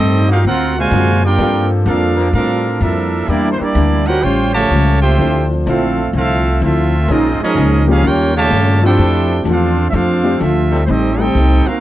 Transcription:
Already playing: upright bass G2, hollow-body jazz guitar A2 G3, trombone section D#3 G3 A3 C4 D#4 G4, trumpet section C4 G4 A4 D#5
0.00 hollow-body jazz guitar C4 D#4
0.26 trombone section D3 A#3 C4 F#4
0.31 trumpet section D#4 G4 A#4 F5, trombone section F4
0.44 upright bass D2, hollow-body jazz guitar D3 A#3 C4 F#4, trombone section A#3 C4 F#4, trumpet section C4 F4 A#4 F#5
0.78 trombone section A#2 C3 G#3, trumpet section F#4 C5 F5 G#5
0.91 upright bass F#2, hollow-body jazz guitar D3 A#3 C4 F#4, grand piano F#3 C4 D4 F4 G#4
1.25 trombone section A#3 D4 G4, trumpet section F4 A#4 D5 G5
1.38 upright bass G2, trombone section F3 A#3 C4 A4, hollow-body jazz guitar G3 C4 F4 A#4, grand piano G3 C4 D4 F4 G4
1.86 upright bass F2, hollow-body jazz guitar G3 C4 F4 A#4, trombone section A#3 D4 F4, trumpet section D4 A4 A#4 F5
2.16 trombone section F3 A#3 C4 A#4
2.33 upright bass A2, hollow-body jazz guitar G3 C4 F4 A#4, trombone section C4 D4 F4, trumpet section D4 A4 A#4 F5
2.80 upright bass F2, trombone section F3 A#3 E4, hollow-body jazz guitar G3 C4 F4 A#4, trumpet section D4 A4 A#4 E5
3.28 upright bass E2, hollow-body jazz guitar E3 A#3 D4 G4, trombone section G3 A#3 D4 E4 A#4, trumpet section A#3 E4 G4 D5
3.52 trumpet section C5
3.60 trombone section G3 A#3 D4, trumpet section A#3 E4 G4 D5, muted upright bass stroke
3.75 upright bass D2, hollow-body jazz guitar E3 A#3 D4 G4
4.06 trombone section G3 C#4 F4 F#4 C5, trumpet section D4 G4 A#4 F#5
4.22 upright bass A1, hollow-body jazz guitar A2 G3 C#4 F4, trombone section G3 C#4 G4, trumpet section F4 C5 C#5 G5
4.54 trombone section C#3 F3 A3, trumpet section G4 C#5 F5 A5
4.70 upright bass C#2, hollow-body jazz guitar A2 G3 C#4 F4
5.02 trombone section A3 C4 G4, trumpet section F4 C5 E5 G5
5.17 upright bass D2, hollow-body jazz guitar D3 F3 C4 E4, grand piano F3 C4 D4 F4 A4, trombone section F3 D4 F4 C5
5.66 upright bass A#1, hollow-body jazz guitar D3 F3 C4 E4, trombone section A3 C4 F4, trumpet section C4 A4 E5 F5
6.12 upright bass C2, hollow-body jazz guitar D3 F3 C4 E4, trumpet section C4
6.17 trombone section A3 C4 F4, trumpet section A4 E5 F5
6.60 upright bass D2, hollow-body jazz guitar D3 F3 C4 E4, trombone section A3 C4 F4, trumpet section F4 A4
6.64 trumpet section C4 E5
7.08 upright bass A#1, hollow-body jazz guitar A#2 G#3 C#4 F4, trombone section G#3 C#4 D#4 F4 A#4, trumpet section C4 F4 G#4 D#5
7.40 trombone section F3 G#3 D#4, trumpet section C#4 G#4 D#5, muted upright bass stroke
7.44 trumpet section A#4
7.54 upright bass C#2, hollow-body jazz guitar A#2 G#3 C#4 F4
7.85 trombone section F3 G#3 C#4 D#4 F4 G4, grand piano F3 A#3 C#4 D#4 G4
7.90 trumpet section C#4 G#4 A#4 F5
8.01 upright bass D#2, hollow-body jazz guitar D#3 G3 C#4 F4
8.06 trombone section A#3 C#4 G4, trumpet section F4 A#4 C#5 G5
8.36 trombone section A#2 C#3 A3, trumpet section G4 C#5 F5 A5
8.50 upright bass G2, hollow-body jazz guitar D#3 G3 C#4 F4
8.81 trombone section F3 A3 C4 D4 E4 G4, grand piano F3 A3 C4 D4 F4, trumpet section D4 A4 C5 G5
8.96 upright bass F2, hollow-body jazz guitar F3 A3 D4 G4
9.44 upright bass E2, hollow-body jazz guitar F3 A3 D4 G4
9.48 trombone section C4 D4 F4, trumpet section D4 A4 C5 F5
9.90 upright bass F2, hollow-body jazz guitar F3 A3 D4 G4, trombone section C4 D4, trumpet section E5
9.95 trumpet section D4 A4 C5 F5, trombone section F4
10.24 grand piano F3 A3 C4 D4 G4
10.39 upright bass D2, hollow-body jazz guitar F3 A3 D4 G4, trumpet section C4 F4 A4 E5
10.43 trombone section F4
10.71 trombone section G3 C4 D#4 A4
10.86 upright bass A1, hollow-body jazz guitar A2 G3 C4 D#4, trombone section G3 C4 D#4, trumpet section C5
10.90 trumpet section C4 G4 A4 D#5
11.18 grand piano G3 A3 C4 D#4 A4, trombone section C4 D#4 G4, trumpet section D#4 A4 C5 G5
11.35 upright bass C2, hollow-body jazz guitar A2 G3 C4 D#4
11.67 trombone section A#3 C4 D#4, trumpet section C4 F#4 A#4 F5, muted upright bass stroke

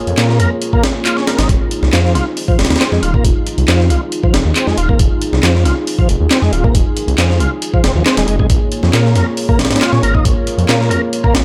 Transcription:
Already playing: analog synth pad A#3 F4 G#4 C#5
0.07 detuned saw bass F2, closed hi-hat
0.18 detuned saw bass A#2, tonewheel organ A#3, snare, clap, closed hi-hat
0.29 snare
0.40 detuned saw bass F2, tonewheel organ A#4, closed hi-hat
0.62 closed hi-hat
0.73 tonewheel organ A#3, kick
0.84 snare, closed hi-hat
1.05 tonewheel organ F4, clap, closed hi-hat
1.17 tonewheel organ C#4, snare
1.27 tonewheel organ A#4, snare, closed hi-hat
1.39 detuned saw bass G#1, tonewheel organ D#4, snare, closed hi-hat
1.49 detuned saw bass F1, analog synth pad D#4 G#4, kick, closed hi-hat
1.71 closed hi-hat
1.83 detuned saw bass C2, snare
1.93 detuned saw bass F2, tonewheel organ F3, snare, clap, closed hi-hat
2.05 snare
2.15 detuned saw bass C2, tonewheel organ F4, snare, closed hi-hat
2.37 open hi-hat
2.48 tonewheel organ F3, kick
2.59 detuned saw bass F1, snare, closed hi-hat
2.65 snare, closed hi-hat
2.70 detuned saw bass D#2, snare, closed hi-hat
2.76 snare, closed hi-hat
2.80 tonewheel organ C4, snare, clap, closed hi-hat
2.92 detuned saw bass F2, tonewheel organ G#3, snare
3.03 detuned saw bass D#1, tonewheel organ F4, closed hi-hat
3.14 tonewheel organ A#3, kick
3.24 detuned saw bass F1, kick, closed hi-hat
3.47 closed hi-hat
3.58 detuned saw bass C2, closed hi-hat
3.68 detuned saw bass F2, tonewheel organ F3, snare, clap, closed hi-hat
3.80 snare
3.90 detuned saw bass C2, tonewheel organ F4, closed hi-hat
4.12 closed hi-hat
4.23 tonewheel organ F3, kick
4.34 detuned saw bass F1, snare, closed hi-hat
4.45 detuned saw bass D#2
4.56 tonewheel organ C4, clap, closed hi-hat
4.67 detuned saw bass F2, tonewheel organ G#3, snare
4.78 detuned saw bass D#1, tonewheel organ F4, closed hi-hat
4.89 tonewheel organ A#3, kick
4.99 detuned saw bass F1, kick, closed hi-hat
5.22 closed hi-hat
5.33 detuned saw bass C2, snare
5.43 detuned saw bass F2, tonewheel organ F3, snare, clap, closed hi-hat
5.55 snare
5.65 detuned saw bass C2, tonewheel organ F4, snare, closed hi-hat
5.87 open hi-hat
5.99 tonewheel organ F3, kick
6.09 detuned saw bass F1, closed hi-hat
6.20 detuned saw bass D#2
6.31 tonewheel organ C4, snare, clap, closed hi-hat
6.42 detuned saw bass F2, tonewheel organ G#3, snare
6.53 detuned saw bass D#1, tonewheel organ F4, closed hi-hat
6.64 tonewheel organ A#3, kick
6.75 detuned saw bass F1, kick, closed hi-hat
6.97 closed hi-hat
7.08 detuned saw bass C2, closed hi-hat
7.18 detuned saw bass F2, tonewheel organ F3, snare, clap, closed hi-hat
7.30 snare
7.40 detuned saw bass C2, tonewheel organ F4, closed hi-hat
7.62 closed hi-hat
7.74 tonewheel organ F3, kick
7.84 detuned saw bass F1, tonewheel organ C4, snare, closed hi-hat
7.95 detuned saw bass D#2, tonewheel organ F3
8.06 tonewheel organ C4, snare, clap, closed hi-hat
8.17 detuned saw bass D#1, tonewheel organ G#3, snare, closed hi-hat
8.28 detuned saw bass F1, tonewheel organ G#3, closed hi-hat
8.39 detuned saw bass C2, tonewheel organ G#3, kick
8.50 detuned saw bass A#1, analog synth pad A#3 F4 C#5, kick, closed hi-hat
8.72 closed hi-hat
8.83 detuned saw bass F2, snare
8.93 detuned saw bass A#2, tonewheel organ A#3, snare, clap, closed hi-hat
9.05 snare
9.15 detuned saw bass F2, tonewheel organ A#4, snare, closed hi-hat
9.37 open hi-hat
9.49 tonewheel organ A#3, kick
9.59 detuned saw bass A#1, snare, closed hi-hat
9.65 snare, closed hi-hat
9.71 detuned saw bass G#2, snare, closed hi-hat
9.76 snare, closed hi-hat
9.81 tonewheel organ F4, snare, clap, closed hi-hat
9.93 detuned saw bass A#2, tonewheel organ C#4, snare
10.03 detuned saw bass G#1, tonewheel organ A#4, closed hi-hat
10.14 tonewheel organ D#4, kick
10.25 detuned saw bass A#1, kick, closed hi-hat
10.47 closed hi-hat
10.58 detuned saw bass F2, closed hi-hat
10.68 detuned saw bass A#2, tonewheel organ A#3, snare, clap, closed hi-hat
10.81 snare
10.90 detuned saw bass F2, tonewheel organ A#4, closed hi-hat
11.13 closed hi-hat
11.24 tonewheel organ A#3, kick
11.34 detuned saw bass A#1, snare, closed hi-hat

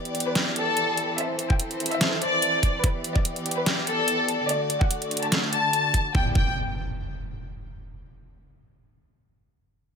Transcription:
Already playing: string section E3 B3 G4 D5, violin section D5
0.05 closed hi-hat
0.15 closed hi-hat
0.20 closed hi-hat
0.26 violin section B4
0.35 snare, closed hi-hat
0.56 violin section A4, closed hi-hat
0.77 closed hi-hat
0.97 closed hi-hat
1.18 string section C4 A4 C5, violin section E5, closed hi-hat
1.39 closed hi-hat
1.50 violin section G5, kick
1.60 closed hi-hat
1.71 closed hi-hat
1.80 closed hi-hat
1.86 closed hi-hat
1.91 violin section E5, closed hi-hat
2.01 snare, closed hi-hat
2.22 violin section D5, closed hi-hat
2.42 closed hi-hat
2.63 kick, closed hi-hat
2.84 string section B3 G4 D5, violin section B4, kick, closed hi-hat
3.04 closed hi-hat
3.16 violin section D5, kick
3.25 closed hi-hat
3.36 closed hi-hat
3.46 closed hi-hat
3.51 closed hi-hat
3.57 violin section B4
3.66 snare, closed hi-hat
3.87 violin section A4, closed hi-hat
4.08 closed hi-hat
4.28 closed hi-hat
4.49 string section D3 A3 F#4, violin section D5, closed hi-hat
4.70 closed hi-hat
4.81 violin section F#5, kick
4.91 closed hi-hat
5.02 closed hi-hat
5.11 closed hi-hat
5.17 closed hi-hat
5.23 violin section A5, closed hi-hat
5.32 snare, closed hi-hat
5.53 violin section A5, closed hi-hat
5.73 closed hi-hat
5.94 kick, closed hi-hat
6.15 string section E3 B3 G4 D5, violin section G5, kick, impact
6.35 violin section G5, kick

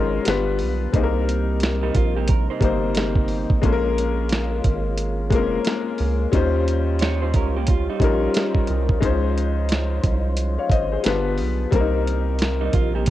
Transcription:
Already playing: analog synth bass G#1, tonewheel organ F3 C#4 D#4 C5, grand piano G#3 C#4 D#4 F4 A#4 C5
0.25 analog synth bass G1, tonewheel organ D3 G3 B3 F4, grand piano G3 B3 D4 F4, snare, closed hi-hat
0.30 grand piano B4
0.59 analog synth bass B1, open hi-hat
0.93 analog synth bass C2, tonewheel organ C3 A#3 D#4, grand piano G3 A#3 C4 D#4, kick, closed hi-hat
0.97 grand piano G#4
1.03 grand piano A#4
1.29 closed hi-hat
1.60 snare, closed hi-hat
1.83 clean electric guitar G3 D#4
1.95 analog synth bass A#1, clean electric guitar F4, kick, closed hi-hat
2.17 clean electric guitar A#3 G4
2.28 clean electric guitar A#4, kick, closed hi-hat
2.50 clean electric guitar D#4 C5
2.60 analog synth bass G1, grand piano G3 A#3 C4 D#4, kick, closed hi-hat
2.65 grand piano C5
2.95 snare, closed hi-hat
3.16 kick
3.28 open hi-hat
3.50 kick
3.62 analog synth bass A#1, grand piano G#3 A#3 C#4 F4, tonewheel organ G#3 C#4 F4, kick, closed hi-hat
3.66 grand piano A4
3.73 grand piano A#4
3.98 closed hi-hat
4.29 snare, closed hi-hat
4.64 analog synth bass G#1, kick, closed hi-hat
4.98 closed hi-hat
5.30 analog synth bass F1, grand piano G#3 A#3 C4 F4, kick, closed hi-hat
5.35 grand piano A#4
5.39 grand piano C#4
5.64 snare, closed hi-hat
5.98 analog synth bass C#2, open hi-hat
6.32 analog synth bass D#2, grand piano G3 C#4 D#4 F4, tonewheel organ G3 C5, kick, closed hi-hat
6.36 grand piano C5
6.68 closed hi-hat
6.99 clean electric guitar F4 C#5, snare, closed hi-hat
7.22 clean electric guitar D#4 C5
7.34 analog synth bass C#2, clean electric guitar C#4 A#4, kick, closed hi-hat
7.56 clean electric guitar A#3 G4
7.67 clean electric guitar F4, kick, closed hi-hat
7.89 clean electric guitar G3 D#4
7.99 analog synth bass A#1, grand piano G3 C#4 D#4 F4, kick, closed hi-hat
8.04 grand piano A#4
8.34 snare, closed hi-hat
8.55 kick
8.67 analog synth bass C2, closed hi-hat
8.89 kick
9.00 analog synth bass C#2, tonewheel organ F3 D#4 C5, grand piano G#3 C#4 D#4 F4, kick, closed hi-hat
9.05 grand piano C5
9.38 closed hi-hat
9.69 snare, closed hi-hat
10.04 analog synth bass C2, kick, closed hi-hat
10.37 closed hi-hat
10.59 grand piano C#5 F5
10.70 analog synth bass G#1, grand piano C5 D#5, kick, closed hi-hat
10.92 grand piano G#4 C5
11.03 analog synth bass G1, tonewheel organ D3 G3 B3 F4, grand piano G3 B3 D4 F4, snare, closed hi-hat
11.08 grand piano B4
11.37 analog synth bass B1, open hi-hat
11.71 analog synth bass C2, tonewheel organ C3 A#3 D#4, grand piano G3 A#3 C4 C#4, kick, closed hi-hat
11.75 grand piano A#4
11.81 grand piano D#4
12.07 closed hi-hat
12.39 snare, closed hi-hat
12.61 clean electric guitar G3 D#4
12.73 analog synth bass A#1, clean electric guitar F4, kick, closed hi-hat
12.95 clean electric guitar A#3 G4
13.06 closed hi-hat

